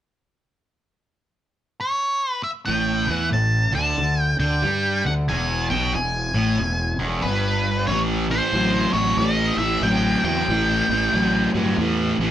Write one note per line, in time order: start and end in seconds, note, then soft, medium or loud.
1.81 2.31 C#5 medium
2.31 2.43 B4 medium
2.43 2.50 E5 medium
2.65 3.06 A1 medium
2.65 3.07 A2 medium
2.65 3.09 G5 medium
3.08 3.31 E2 medium
3.08 3.30 E3 medium
3.08 3.28 F#5 medium
3.31 3.71 A1 medium
3.31 3.65 A2 medium
3.31 3.74 A5 medium
3.72 3.97 D2 medium
3.72 3.97 D3 loud
3.72 4.21 A5 medium
3.98 4.36 D2 medium
3.98 4.31 D3 medium
4.21 4.36 G5 medium
4.39 4.61 D2 medium
4.39 4.63 D3 medium
4.39 5.06 G5 medium
4.62 5.02 G2 medium
4.62 5.03 G3 medium
5.05 5.27 D2 medium
5.05 5.24 D3 medium
5.05 5.13 F#5 medium
5.29 5.68 E1 medium
5.29 5.69 E2 medium
5.29 5.70 G#5 medium
5.70 5.92 B1 medium
5.70 5.93 B2 medium
5.70 5.92 G5 medium
5.93 6.32 E1 medium
5.93 6.27 E2 medium
5.93 7.21 G#5 medium
6.34 6.57 A1 medium
6.34 6.58 A2 medium
6.58 6.97 E1 medium
6.58 6.92 E2 medium
6.99 7.22 E1 medium
6.99 7.23 E2 medium
7.22 7.85 G1 medium
7.22 7.89 G2 medium
7.22 7.87 B4 medium
7.87 8.39 A1 medium
7.87 8.26 A2 medium
7.87 8.26 E3 medium
7.87 7.98 C#5 medium
8.30 8.51 A2 medium
8.30 8.52 E3 medium
8.30 8.93 C5 medium
8.52 8.85 A1 medium
8.52 8.91 A2 medium
8.52 8.91 F#3 medium
8.93 9.13 A1 medium
8.93 9.16 A2 medium
8.93 9.16 F#3 medium
8.93 9.19 C#5 medium
9.17 9.50 A1 medium
9.17 9.56 A2 medium
9.17 9.56 E3 medium
9.17 9.35 D5 medium
9.35 9.58 D#5 medium
9.57 9.77 A1 medium
9.57 9.81 A2 medium
9.57 9.81 E3 medium
9.57 9.81 E5 medium
9.81 10.15 A1 medium
9.81 10.21 A2 medium
9.81 10.21 F#3 medium
9.81 10.24 G5 medium
10.23 10.43 E2 medium
10.23 10.46 A2 medium
10.23 10.46 F#3 medium
10.23 11.51 G5 medium
10.48 10.81 A1 medium
10.48 10.87 A2 medium
10.48 10.86 E3 medium
10.89 11.08 A1 medium
10.89 11.12 A2 medium
10.89 11.12 E3 medium
11.13 11.46 A1 medium
11.13 11.51 A2 medium
11.13 11.51 F#3 medium
11.54 11.73 G2 medium
11.54 11.76 A2 medium
11.54 11.76 F#3 medium
11.77 12.10 E2 medium
11.77 12.16 A2 medium
11.77 12.17 E3 medium
12.18 12.31 A1 medium
12.18 12.31 A2 medium
12.18 12.31 E3 medium